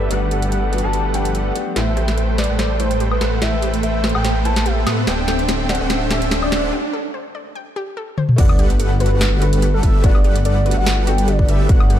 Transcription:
Already playing: A3 B3 D4 F#4 A4 F#5, riser
0.09 G1 G3 A3 B3 D4 G4 A4 B4 F#5, closed hi-hat
0.31 closed hi-hat
0.42 closed hi-hat
0.52 F#5, closed hi-hat
0.72 A3 B3 D4 F#4, closed hi-hat
0.78 closed hi-hat
0.84 G1 G3 G4 A4 B4 F#5 A5
0.93 closed hi-hat
1.13 A3 B3 D4 F#5 G5, closed hi-hat
1.25 closed hi-hat
1.35 F#5, closed hi-hat
1.54 A3 B3 D4 G4, closed hi-hat
1.76 A1 A3 E4 A4 B4 C5 E5 G5, snare, closed hi-hat
1.97 G4, closed hi-hat
2.08 snare, closed hi-hat
2.18 A4, closed hi-hat
2.38 B4 D5, snare, closed hi-hat
2.44 closed hi-hat
2.49 A1 A3 A4 B4 C5 G5
2.59 C5, snare, closed hi-hat
2.79 E4 C5, closed hi-hat
2.91 closed hi-hat
3.00 G4, closed hi-hat
3.12 B4, high woodblock
3.21 A1 A3 A4 B4 C5 F#5, snare, closed hi-hat
3.42 A1 A3 E4 A4 B4 C5 E5 G5, snare, closed hi-hat
3.62 G4, closed hi-hat
3.74 closed hi-hat
3.83 A4 E5, closed hi-hat
4.04 B4, snare, closed hi-hat
4.09 closed hi-hat
4.15 A1 A3 A4 B4 C5 G5, high woodblock
4.24 C5, snare, closed hi-hat
4.45 E4 A5, closed hi-hat
4.56 snare, closed hi-hat
4.66 G4 E5, closed hi-hat
4.87 A2 A3 A4 B4 C5 F#5, snare, closed hi-hat, high woodblock
5.07 D1 D4 G4 A4 C5 E5 G5, snare, closed hi-hat
5.28 A4, snare, closed hi-hat
5.39 closed hi-hat
5.49 C5, snare, closed hi-hat
5.69 D5 F#5, snare, closed hi-hat
5.75 closed hi-hat
5.81 D1 D4 A4 C5 E5 G5
5.90 G5, snare, closed hi-hat
6.11 G4 E5, snare, closed hi-hat
6.22 closed hi-hat
6.31 A4, snare, closed hi-hat
6.42 D5, high woodblock
6.52 D1 D4 A4 C5 E5 F#5, snare, closed hi-hat
6.73 G4
6.93 A4
7.14 C5
7.35 D5
7.55 G5
7.76 G4
7.97 A4
8.18 C5, high tom
8.29 mid tom
8.36 G1 G3 A3 B3 D4 F#4 G4 A4 B4 D5 F#5, kick, closed hi-hat, crash, sub drop
8.49 high woodblock
8.59 G4, closed hi-hat
8.70 closed hi-hat
8.80 A4, closed hi-hat
8.99 A3 B3 D4 F#4 B4, closed hi-hat
9.06 closed hi-hat
9.11 G1 G3 G4 A4 B4 F#5
9.21 D5, snare, closed hi-hat
9.40 A3 B3 D4 F#4 B4, closed hi-hat
9.44 A4
9.53 closed hi-hat
9.62 G4, closed hi-hat
9.74 A4
9.83 G1 G3 G4 A4 B4 E5, kick, closed hi-hat
10.02 G1 G3 A3 B3 D4 F#4 G4 A4 B4 D5 F#5, kick, closed hi-hat
10.15 high woodblock
10.24 G4, closed hi-hat
10.36 closed hi-hat
10.45 A4 D5, closed hi-hat
10.65 A3 B3 D4 F#4 B4, closed hi-hat
10.71 closed hi-hat
10.77 G1 G3 G4 A4 B4 F#5
10.86 D5, snare, closed hi-hat
11.05 A3 B3 D4 F#4 A4 G5, closed hi-hat
11.18 closed hi-hat
11.28 G4 D5, closed hi-hat
11.39 kick
11.49 G1 G3 G4 A4 B4 E5, closed hi-hat
11.67 G1 G3 A3 B3 D4 F#4 G4 A4 B4 F#5, kick, closed hi-hat
11.71 F#5
11.80 high woodblock
11.90 G4, closed hi-hat

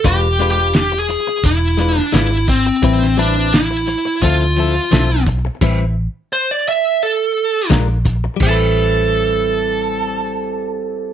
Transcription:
0.04 E1 G#3 D4 F4 G4 B4, kick, closed hi-hat
0.39 G#3 D4 F4 B4, closed hi-hat
0.51 G4
0.59 D4 F4
0.73 muted clean electric guitar stroke, snare, closed hi-hat, tambourine
0.92 muted clean electric guitar stroke
0.98 G#4
1.09 muted clean electric guitar stroke, closed hi-hat
1.27 muted clean electric guitar stroke
1.44 E1 E4, kick, closed hi-hat
1.77 G#3 D4 F4 B4, closed hi-hat
1.97 D4, muted clean electric guitar stroke, snare
2.12 G#1 G#3 D4 E4 F4 B4, snare, closed hi-hat, tambourine
2.32 muted clean electric guitar stroke
2.48 C4, muted clean electric guitar stroke, kick, closed hi-hat
2.66 muted clean electric guitar stroke
2.82 A1 G3 C4 E4 B4, kick, closed hi-hat
3.02 snare
3.17 G3 C4 D4 E4 B4, closed hi-hat
3.35 C4 E4 B4
3.52 E4, muted clean electric guitar stroke, snare, closed hi-hat, tambourine
3.71 muted clean electric guitar stroke
3.87 muted clean electric guitar stroke, closed hi-hat
4.05 muted clean electric guitar stroke
4.22 D2 F3 C4 E4 F4 A4, kick, closed hi-hat
4.57 F3 C4 E4 A4, closed hi-hat
4.75 muted clean electric guitar stroke
4.91 B1 F3 C4 E4 A4, snare, closed hi-hat, tambourine
5.10 muted clean electric guitar stroke
5.27 muted clean electric guitar stroke, kick, closed hi-hat
5.45 muted clean electric guitar stroke
5.61 A1 G3 C4 E4 B4, kick, closed hi-hat, crash
6.33 C5
6.51 D5
6.69 E5
7.03 A4
7.70 A#1 G#3 D4 F4 A#4, kick, snare, closed hi-hat, tambourine
7.89 muted clean electric guitar stroke
8.05 muted clean electric guitar stroke, kick, closed hi-hat
8.24 muted clean electric guitar stroke
8.36 A1 G3, kick, crash
8.42 C4 A4
8.47 E4
8.51 B4

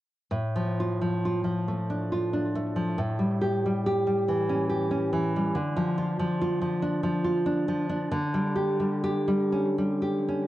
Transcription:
0.31 A2
0.56 F3
0.80 F4
1.01 F3
1.25 F4
1.44 F3
1.68 A3
1.90 D4
2.12 F4
2.33 D4
2.55 A3
2.76 F3
2.98 A2
3.19 G3
3.41 G4
3.66 G3
3.86 G4
4.07 G3
4.28 E3
4.49 C#4
4.70 G4
4.91 C#4
5.13 E3
5.36 G3
5.55 D3
5.77 F3
5.98 F4
6.20 F3
6.42 F4
6.62 F3
6.82 D4
7.03 F3
7.24 F4
7.46 D4
7.68 F3
7.89 D4
8.11 D3
8.34 G3
8.55 G4
8.80 G3
9.04 G4
9.28 G3
9.52 C#4
9.78 G3
10.02 G4
10.28 C#4

